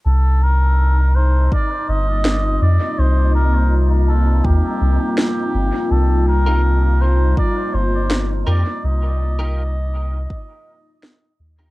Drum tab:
SD |------o-|------o-|------o-|------o-|
BD |----o---|----o---|----o---|----o---|